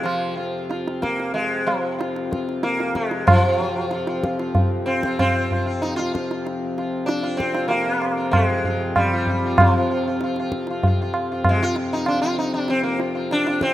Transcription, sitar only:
0.03 0.35 F3 medium
0.37 0.68 F4 soft
0.69 1.00 F4 soft
1.02 1.33 A#3 loud
1.34 1.68 G#3 medium
1.67 1.97 F3 medium
1.98 2.29 F4 soft
2.31 2.61 F4 soft
2.63 2.95 A#3 medium
2.96 3.28 G#3 medium
3.27 4.19 F3 medium
3.27 3.44 F4 soft
3.45 3.59 F4 soft
3.60 3.75 F4 soft
3.76 3.91 F4 soft
3.92 4.07 F4 soft
4.09 4.23 F4 soft
4.24 4.38 F4 soft
4.39 4.69 F4 soft
4.86 5.18 C4 medium
5.05 5.33 F4 soft
5.19 5.84 C4 loud
5.36 5.51 F4 soft
5.52 5.65 F4 soft
5.66 5.95 F4 soft
5.82 5.96 D#4 medium
5.96 6.12 F4 loud
6.13 6.43 F4 soft
6.78 7.06 F4 soft
7.06 7.39 D4 loud
7.23 7.52 F4 soft
7.37 7.68 C4 loud
7.54 7.84 F4 soft
7.68 8.31 A#3 medium
7.86 8.15 F4 soft
8.17 8.47 F4 soft
8.31 8.96 G#3 medium
8.49 8.63 F4 soft
8.65 8.94 F4 soft
8.96 9.60 G3 medium
9.13 9.28 F4 soft
9.29 9.44 F4 soft
9.46 9.73 F4 soft
9.60 10.49 F3 medium
9.78 9.90 F4 soft
9.91 10.06 F4 soft
10.08 10.22 F4 soft
10.24 10.38 F4 soft
10.40 10.67 F4 soft
10.70 10.86 F4 soft
10.87 11.00 F4 soft
11.02 11.29 F4 soft
11.32 11.60 F4 soft
11.49 11.63 G#3 medium
11.62 11.74 F4 loud
11.76 12.05 F4 soft
11.93 12.08 D#4 medium
12.08 12.21 D4 medium
12.22 12.38 F4 medium
12.39 12.53 D#4 medium
12.54 12.69 D4 medium
12.70 12.83 C4 medium
12.83 12.98 A#3 medium
13.00 13.14 F4 soft
13.15 13.43 F4 soft
13.32 13.62 D4 loud
13.47 13.74 F4 soft
13.62 13.74 C4 loud

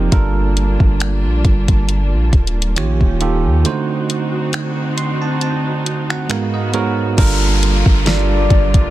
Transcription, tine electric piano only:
0.00 0.14 F3 medium
0.00 0.14 C4 medium
0.00 0.14 D#4 medium
0.00 0.14 G4 medium
0.00 0.13 A#4 medium
0.12 1.47 G3 medium
0.12 1.48 D4 medium
0.12 1.48 F4 medium
0.12 1.48 A4 medium
0.12 1.48 A#4 medium
2.76 3.13 D#3 medium
2.76 3.13 A#3 medium
2.76 3.13 F4 medium
2.76 3.13 G4 medium
2.76 3.13 C#5 medium
3.20 3.55 D#3 medium
3.20 3.56 A#3 medium
3.20 3.56 F4 medium
3.20 3.56 G4 medium
3.20 3.56 A4 medium
3.64 5.00 D3 medium
3.64 5.01 A3 medium
3.64 5.01 D#4 medium
3.64 5.01 F#4 medium
3.64 5.01 C5 medium
4.98 5.20 C6 medium
5.22 5.40 A5 medium
5.42 6.06 A5 medium
6.10 6.29 F#5 medium
6.29 6.66 G#2 medium
6.29 6.66 G#3 medium
6.29 6.66 B3 medium
6.29 6.66 F#4 medium
6.29 6.66 A#4 medium
6.29 6.52 F5 medium
6.54 6.73 D#5 medium
6.73 7.08 G#2 medium
6.73 7.08 G#3 medium
6.73 7.08 B3 medium
6.73 7.09 F#4 medium
6.73 7.09 A#4 loud
6.73 7.15 C#5 medium
7.17 7.87 G3 medium
7.17 7.87 D4 medium
7.17 7.87 F4 medium
7.17 7.87 A4 medium
7.17 7.88 A#4 loud
8.05 8.90 G3 medium
8.05 8.90 D4 medium
8.05 8.90 F4 medium
8.05 8.90 A4 medium
8.05 8.90 A#4 medium

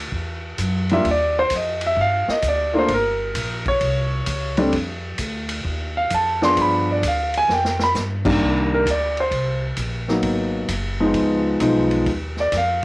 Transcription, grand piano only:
0.91 1.04 G3 medium
0.91 1.04 A#3 medium
0.91 1.05 D4 medium
0.91 1.05 F4 medium
0.91 1.06 E5 medium
1.11 1.38 D5 medium
1.39 1.52 C5 medium
1.56 1.84 D#5 medium
1.86 1.99 E5 medium
2.01 2.29 F5 medium
2.30 2.44 D#5 medium
2.48 2.76 D5 medium
2.74 2.88 A3 medium
2.74 2.88 A#3 medium
2.74 2.88 D4 medium
2.74 2.88 F4 medium
2.78 2.91 C5 medium
2.94 3.65 A#4 medium
3.68 4.70 C#5 medium
4.58 4.72 G3 medium
4.58 4.72 A3 medium
4.58 4.72 C4 medium
4.58 4.72 D4 medium
5.97 6.11 F5 medium
6.14 6.42 A5 medium
6.42 7.00 F3 medium
6.42 7.00 B3 medium
6.42 7.00 D4 medium
6.42 7.00 G#4 medium
6.42 6.58 C6 loud
6.62 6.89 B5 medium
6.92 7.04 D5 medium
7.08 7.35 F5 medium
7.38 7.50 G#5 loud
7.53 7.80 G5 medium
7.83 7.91 B5 loud
8.25 8.83 C2 medium
8.25 8.83 D#3 medium
8.25 8.83 G3 medium
8.25 8.83 A#3 medium
8.25 8.83 D4 medium
8.74 8.87 A#4 medium
8.90 9.18 D5 medium
9.20 9.61 C5 medium
10.09 10.67 F#3 medium
10.09 10.66 A#3 medium
10.09 10.67 B3 medium
10.09 10.67 D#4 medium
11.00 11.58 F3 medium
11.00 11.58 G#3 medium
11.00 11.58 B3 medium
11.00 11.58 D#4 medium
11.61 12.07 F3 medium
11.61 12.07 G#3 medium
11.61 12.07 B3 medium
11.61 12.07 D#4 medium
12.40 12.54 D5 medium
12.57 12.85 F5 medium

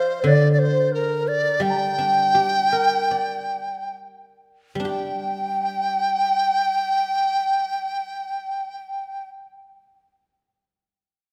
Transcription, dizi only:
0.00 0.28 C5 medium
0.27 0.51 D5 medium
0.52 0.61 D5 soft
0.59 0.92 C5 medium
0.94 1.29 A#4 medium
1.28 1.64 D5 medium
1.62 3.97 G5 medium
4.86 9.28 G5 medium

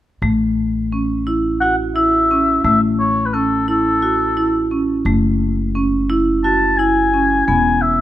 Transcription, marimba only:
0.22 0.75 A3 medium
0.92 1.18 C#4 soft
1.27 1.53 E4 medium
1.62 1.88 F#4 soft
1.96 2.22 E4 medium
2.31 2.57 C#4 medium
2.65 3.17 A3 medium
3.34 3.60 C#4 medium
3.68 3.94 E4 medium
4.02 4.29 F#4 medium
4.37 4.63 E4 medium
4.71 4.97 C#4 medium
5.06 5.58 A3 medium
5.75 6.01 C#4 medium
6.10 6.36 E4 medium
6.44 6.71 F#4 medium
6.79 7.05 E4 medium
7.14 7.40 C#4 medium
7.48 8.01 B3 medium

